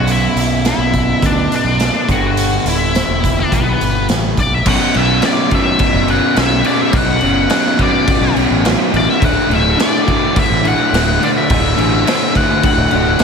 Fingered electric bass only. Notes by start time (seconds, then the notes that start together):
Already playing: B1
0.35 B1
0.78 B1
1.22 D2
1.64 B1
2.09 G1
2.65 D1
3.08 E1
3.53 B1
3.80 G1
4.10 A1
4.37 B1
4.65 B1
4.96 B1
5.94 F#1
6.37 B1
6.93 B1
7.22 F#1
8.21 B1
8.36 B1
8.50 A1
8.93 A1
9.22 D1
9.49 D1
10.50 A1
10.93 D1
11.50 D1
11.78 A1
12.77 D1
12.92 C#1
13.20 B0